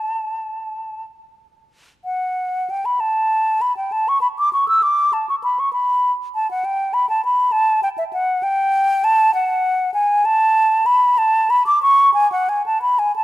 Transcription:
Already playing: A5
2.05 F#5
2.70 G5
2.85 B5
3.00 A5
3.61 B5
3.77 G5
3.92 A5
4.09 C#6
4.21 B5
4.39 D6
4.53 C#6
4.68 E6
4.83 D6
5.13 A5
5.29 C#6
5.44 B5
5.60 C#6
5.73 B5
6.35 A5
6.51 F#5
6.65 G5
6.94 B5
7.09 A5
7.25 B5
7.52 A5
7.83 G5
7.98 E5
8.13 F#5
8.43 G5
9.04 A5
9.34 F#5
9.94 G#5
10.25 A5
10.86 B5
11.18 A5
11.50 B5
11.67 D6
11.82 C#6
12.14 G#5
12.32 F#5
12.49 G#5
12.66 A5
12.82 B5
12.99 G#5
13.16 A5

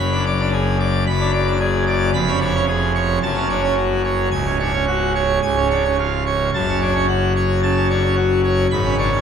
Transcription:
0.00 F#1 F#2 B5
0.12 D4
0.26 D5
0.40 D4
0.53 G#4
0.80 D5
1.07 F#1 F#2 B5
1.20 D4
1.33 D5
1.47 D4
1.60 G#4
1.87 D5
2.14 F1 F2 B5
2.28 C#4
2.41 D4 C#5
2.55 C#4
2.68 G#4
2.95 C#5
3.23 F#1 F#2 A5
3.36 C#4
3.49 D4 C#5
3.63 C#4
3.77 F#4
4.05 C#5
4.31 C#1 C#2 G#5
4.46 C#4
4.60 D4 C#5
4.73 C#4
4.88 F#4
5.15 C#5
5.43 C#1 C#2 G#5
5.56 C#4
5.70 D4 C#5
5.84 C#4
5.99 F4
6.26 C#5
6.54 F#1 F#2 A5
6.68 C#4
6.82 D4 C#5
6.95 C#4
7.08 F#4
7.36 C#5
7.63 C#3 A5
7.77 C#4
7.90 D4 C#5
8.04 C#4
8.17 F#4
8.44 C#5
8.71 G#1 G#2 B5
8.85 C#4
8.98 D4 C#5
9.12 C#4

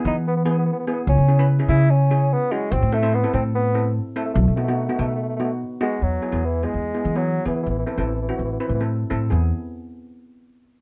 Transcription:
0.05 E3 B3 D#4 E4 B4
0.27 B3
0.37 B3
0.45 B3 E4 G#4
0.50 B3
0.58 B3
0.65 B3
0.72 B3
0.79 B3
0.87 B3 E4 G#4
0.93 B3
1.07 C#2 C#4
1.18 C#3
1.28 C#4 E4 G#4
1.39 C#4 E4 B4
1.59 C#4 E4 G#4
1.69 C#3 C#4 E4 G#4
1.90 C#4
2.11 C#4 E4 G#4
2.33 B3
2.51 G#3 C#4 E4 F#4
2.72 A1 C4
2.83 A2
2.92 A3 C4 E4 A4
3.02 C4 E4 C5
3.14 B3
3.24 C4 E4 A4
3.33 A2 C4 E4 A4
3.55 B3
3.75 C4 E4 A4
4.16 A3 C4 E4 A4
4.25 A3
4.33 B1 A3
4.41 A3
4.47 B2 A3
4.56 A3 B3 D#4 F#4
4.64 A3
4.68 A3 B3 D#4 F#4
4.77 A3
4.85 A3 B3
4.89 D#4 F#4
4.94 A3
4.99 B2 A3 B3 D#4 A4
5.08 A3
5.15 A3
5.23 A3
5.29 A3
5.36 A3 B3 D#4 F#4
5.44 A3
5.81 G#3 B3 D#4 F#4
6.02 E2 F#3
6.22 B3 E4 G#4
6.32 E2 B3 E4 G#4
6.44 E3
6.63 G#3 B3 E4 G#4
6.74 E2
6.94 B3 E4 G#4
7.05 E3
7.15 F#3 B3 E4 G#4
7.45 E3 B3 E4 G#4
7.55 E3
7.63 A1 E3
7.70 E3
7.78 E3
7.86 E3 C4 E4 A4
7.92 E3
7.97 A1 E3 C4 E4 A4
8.06 E3
8.15 E3
8.22 E3
8.29 E3 C4 E4 F#4
8.37 A1 E3
8.44 E3
8.52 E3
8.60 E3 C4 E4 B4
8.68 A2 E3
8.74 E3
8.81 C4 E4 A4
9.10 A2 C4 E4 A4
9.30 E2 B3 E4 G#4

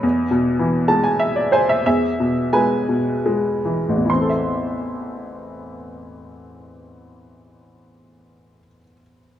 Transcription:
Already playing: D#4 B4
0.03 E2
0.31 B2
0.59 E3
0.88 G#3 A5
1.04 G#5
1.20 E5
1.36 D5
1.52 C5 G#5
1.69 E5
1.86 E2 G#4 E5
2.20 B2
2.53 G#3 B4 G#5
2.89 B2
3.26 G#3
3.65 E3
3.89 A1
3.97 E2
4.05 E3
4.10 C4 C6
4.21 A4
4.29 E5

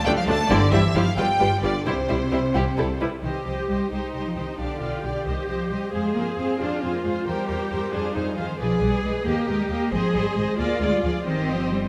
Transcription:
0.05 D2 G3 A3 D4 F4 D5 G5
0.16 F3 F5
0.27 D2 A3 D4 F4 D5 A5
0.49 G1 D3 G3 E4 G4 C5 D5
0.71 G1 E3 G3 E4 G4 C5 E5
0.94 G1 F3 G3 E4 G4 C5 F5
1.17 G1 G3 F4 G4 B4 G5
1.40 G1 G3 F4 G4 B4
1.62 G1 D3 G3 F4 G4 B4 D5
1.85 C2 C3 G3 E4 G4 C5
2.08 C2 G3 E4 G4 C5
2.31 C2 G3 E4 G4 C5
2.55 C2 G3 E4 G4
2.77 C2 G3 E4 A4
3.00 C2 G3 E4 B4
3.23 C2 D#3 G4 C5 D#5
3.45 C2 F3 G4 C5 D#5
3.68 C2 G3 G4 C5 D#5
3.91 C2 G#3 D#4 G4 C5 D#5
4.13 C2 G3 G4 C5 D#5
4.25 F3
4.35 C2 D#3 G4 C5 D#5
4.58 B1 D3 D4 G4 D5 F5
4.80 B1 F4 G4 D5 F5
5.03 B1 G4 D5 F5
5.25 C2 D#3 G4 C5 D#5
5.48 C2 F3 G4 C5 D#5
5.70 C2 G3 G4 C5 D#5
5.92 F2 G#3 G#4 C5 F5
6.14 F2 A#3 G#4 C5 F5
6.37 F2 C4 G#4 C5 F5
6.58 F2 D4 F4 G#4 C5 F5
6.81 F2 C4 G#4 C5 F5
6.93 A#3
7.03 F2 G#3 G#4 C5 F5
7.26 E2 G3 G4 A#4 C5 G5
7.48 E2 A#4 C5 G5
7.69 E2 A#4 C5 G5
7.91 F2 D4 G#4 C5 F5
8.13 F2 D#4 G#4 C5 F5
8.36 F2 D#3 F4 G#4 C5 F5
8.58 B1 F3 G#4 B4 D5
8.80 B1 G3 G#4 B4 D5
9.02 B1 G#3 G#4 B4 D5
9.25 D#2 A#3 G4 A#4 D#5
9.47 D#2 G#3 G4 A#4 D#5
9.59 G3
9.69 D#2 A#3 G4 A#4 D#5
9.91 G#1 F3 G#4 C5 D#5
10.14 G#1 G3 G#4 C5 D#5
10.36 G#1 G#3 G#4 C5 D#5
10.57 D2 A#3 F4 G#4 D5
10.80 D2 G#3 G#4 D5
10.93 G3
11.03 D2 F3 G#4 D5
11.25 G1 D#3 C4 G4 C5 D#5
11.48 F3
11.71 G3

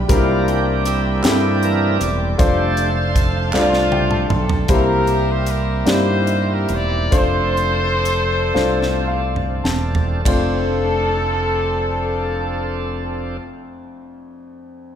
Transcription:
Already playing: G3 D4 F4 B4 G5
0.08 C2 C3 G3 A#3 C4 D4 F4 A#4 C5 E5, kick, closed hi-hat
0.15 E4
0.48 G4, closed hi-hat
0.85 A#3 E4 G4, closed hi-hat
1.23 G2 G3 C4 E4 A4, snare, clap, closed hi-hat
1.63 E3 A#3 D4 A#4, closed hi-hat
2.01 E1 D5, closed hi-hat
2.38 F1 G3 A3 D4 F4 A4 C5 D5 F5 A5, kick, closed hi-hat
2.77 closed hi-hat
3.16 kick, closed hi-hat
3.53 C2 A3 D4 F4 C5, snare, clap
3.62 D5
3.73 snare
3.92 G3 A3 D4 G5, high tom
4.11 A5, mid tom
4.30 B1 A4 C6, mid tom
4.49 A5, floor tom
4.68 C2 C3 G3 A#3 C4 E4 G4 A4 A#4 C5, kick, closed hi-hat
4.76 A#4
5.07 closed hi-hat
5.30 C5
5.46 A#4, closed hi-hat
5.85 G2 A#3 D#4 E4 G4 C5 D5, snare, closed hi-hat
5.92 E4
6.27 closed hi-hat
6.51 A#4
6.69 E1 D5, closed hi-hat
7.11 F1 F3 A3 C4 D4 F4 G4 A4 C5, kick, closed hi-hat
7.19 A4
7.57 closed hi-hat
8.05 closed hi-hat
8.54 C2 A3 D4 F4 C5, snare
8.82 snare
9.08 F5
9.36 mid tom
9.64 E1 A5, snare
9.95 floor tom
10.24 F1 F2 F3 A3 C4 D4 F4 A4 C5, kick, ride bell

